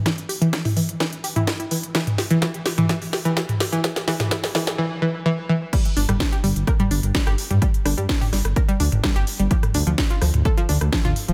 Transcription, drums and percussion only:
0.06 kick loud
0.06 snare medium
0.06 closed hi-hat medium
0.18 closed hi-hat soft
0.29 open hi-hat loud
0.42 closed hi-hat soft
0.53 kick loud
0.53 snare medium
0.53 closed hi-hat medium
0.65 mid tom loud
0.65 open hi-hat medium
0.77 open hi-hat loud
0.89 closed hi-hat soft
1.00 kick loud
1.00 snare medium
1.00 closed hi-hat medium
1.13 closed hi-hat soft
1.24 open hi-hat loud
1.36 closed hi-hat soft
1.36 mid tom loud
1.47 kick loud
1.47 snare medium
1.47 closed hi-hat medium
1.60 closed hi-hat soft
1.71 open hi-hat loud
1.83 closed hi-hat soft
1.95 kick loud
1.95 snare medium
1.95 closed hi-hat medium
2.07 closed hi-hat soft
2.07 mid tom loud
2.18 snare medium
2.18 open hi-hat loud
2.31 closed hi-hat soft
2.42 kick loud
2.42 snare medium
2.42 closed hi-hat medium
2.54 closed hi-hat soft
2.66 snare medium
2.66 open hi-hat loud
2.78 closed hi-hat soft
2.78 mid tom loud
2.89 kick loud
2.89 snare medium
2.89 closed hi-hat medium
3.02 open hi-hat medium
3.13 snare medium
3.13 open hi-hat loud
3.25 closed hi-hat soft
3.37 kick loud
3.37 snare medium
3.37 closed hi-hat medium
3.49 closed hi-hat soft
3.49 mid tom loud
3.60 snare medium
3.60 open hi-hat loud
3.73 closed hi-hat soft
3.84 kick loud
3.84 snare loud
3.84 closed hi-hat medium
3.96 snare medium
3.96 closed hi-hat soft
4.08 snare loud
4.08 open hi-hat loud
4.20 snare medium
4.20 closed hi-hat soft
4.20 mid tom loud
4.31 kick loud
4.31 snare loud
4.31 closed hi-hat medium
4.44 snare medium
4.44 open hi-hat medium
4.55 snare loud
4.55 open hi-hat loud
4.67 snare medium
4.67 closed hi-hat soft
5.73 kick loud
5.73 closed hi-hat medium
5.73 crash loud
5.85 closed hi-hat soft
5.97 open hi-hat loud
6.09 cross-stick medium
6.09 closed hi-hat soft
6.09 mid tom loud
6.20 kick loud
6.20 snare loud
6.20 closed hi-hat medium
6.32 closed hi-hat soft
6.44 open hi-hat loud
6.56 closed hi-hat soft
6.67 kick loud
6.67 cross-stick soft
6.67 closed hi-hat medium
6.80 closed hi-hat soft
6.80 mid tom loud
6.91 open hi-hat loud
7.03 closed hi-hat soft
7.15 kick loud
7.15 snare loud
7.15 closed hi-hat medium
7.27 cross-stick medium
7.27 closed hi-hat soft
7.38 open hi-hat loud
7.51 closed hi-hat soft
7.51 mid tom medium
7.62 kick loud
7.62 closed hi-hat medium
7.74 closed hi-hat soft
7.86 cross-stick medium
7.86 open hi-hat loud
7.98 closed hi-hat soft
8.09 kick loud
8.09 snare loud
8.09 closed hi-hat medium
8.21 mid tom medium
8.21 open hi-hat medium
8.33 snare soft
8.33 open hi-hat loud
8.45 cross-stick medium
8.45 closed hi-hat soft
8.56 kick loud
8.56 closed hi-hat medium
8.69 closed hi-hat soft
8.80 open hi-hat loud
8.92 closed hi-hat soft
8.92 mid tom medium
9.04 kick loud
9.04 cross-stick medium
9.04 snare loud
9.04 closed hi-hat medium
9.16 closed hi-hat soft
9.27 open hi-hat loud
9.39 closed hi-hat soft
9.51 kick loud
9.51 closed hi-hat medium
9.63 cross-stick medium
9.63 closed hi-hat soft
9.63 mid tom medium
9.74 open hi-hat loud
9.87 closed hi-hat soft
9.98 kick loud
9.98 snare loud
9.98 closed hi-hat medium
10.10 closed hi-hat soft
10.22 cross-stick medium
10.22 open hi-hat loud
10.34 closed hi-hat soft
10.34 mid tom medium
10.45 kick loud
10.45 closed hi-hat soft
10.57 closed hi-hat soft
10.69 open hi-hat loud
10.81 cross-stick medium
10.81 closed hi-hat soft
10.93 kick loud
10.93 snare loud
10.93 closed hi-hat medium
11.05 closed hi-hat soft
11.05 mid tom medium
11.16 open hi-hat loud
11.28 closed hi-hat soft

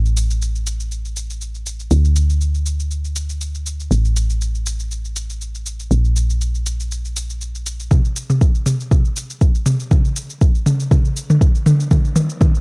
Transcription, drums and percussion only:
0.05 shaker soft
0.17 shaker medium
0.30 shaker soft
0.42 shaker soft
0.55 shaker soft
0.67 shaker medium
0.80 shaker soft
0.91 shaker soft
1.05 shaker soft
1.16 shaker medium
1.30 shaker soft
1.41 shaker soft
1.55 shaker soft
1.66 shaker medium
1.80 shaker soft
1.91 shaker soft
2.05 shaker soft
2.16 shaker medium
2.30 shaker soft
2.41 shaker soft
2.55 shaker soft
2.66 shaker medium
2.80 shaker soft
2.91 shaker soft
3.05 shaker soft
3.16 shaker medium
3.30 shaker soft
3.41 shaker soft
3.55 shaker soft
3.66 shaker medium
3.80 shaker soft
3.91 shaker soft
4.05 shaker soft
4.16 shaker medium
4.30 shaker soft
4.41 shaker soft
4.55 shaker soft
4.66 shaker medium
4.80 shaker soft
4.91 shaker soft
5.05 shaker soft
5.16 shaker medium
5.30 shaker soft
5.41 shaker soft
5.55 shaker soft
5.66 shaker medium
5.80 shaker soft
5.91 shaker soft
6.05 shaker soft
6.16 shaker medium
6.30 shaker soft
6.41 shaker soft
6.55 shaker soft
6.66 shaker medium
6.80 shaker soft
6.91 shaker soft
7.05 shaker soft
7.17 shaker medium
7.30 shaker soft
7.41 shaker soft
7.55 shaker soft
7.66 shaker medium
7.80 shaker soft
7.91 kick loud
7.91 mid tom soft
7.91 shaker soft
8.05 shaker soft
8.16 shaker medium
8.30 mid tom soft
8.30 shaker soft
8.41 kick loud
8.41 shaker soft
8.55 shaker soft
8.66 mid tom soft
8.66 shaker medium
8.80 shaker soft
8.91 kick loud
8.91 mid tom soft
8.91 shaker soft
9.05 shaker soft
9.16 shaker medium
9.30 shaker soft
9.41 kick loud
9.41 shaker medium
9.55 shaker soft
9.66 mid tom medium
9.66 shaker medium
9.80 shaker soft
9.91 kick loud
9.91 mid tom medium
9.91 shaker medium
10.05 shaker soft
10.16 shaker medium
10.30 shaker soft
10.41 kick loud
10.41 shaker medium
10.55 shaker soft
10.66 mid tom medium
10.66 shaker medium
10.80 shaker soft
10.91 kick loud
10.91 mid tom medium
10.91 shaker medium
11.05 shaker soft
11.16 shaker medium
11.30 mid tom medium
11.30 shaker soft
11.41 kick loud
11.41 shaker medium
11.55 shaker soft
11.66 mid tom medium
11.66 shaker medium
11.80 shaker soft
11.91 kick loud
11.91 mid tom medium
11.91 shaker medium
12.05 shaker soft
12.16 mid tom medium
12.16 shaker medium
12.29 shaker soft
12.41 kick loud
12.41 mid tom medium
12.41 shaker medium
12.55 shaker soft

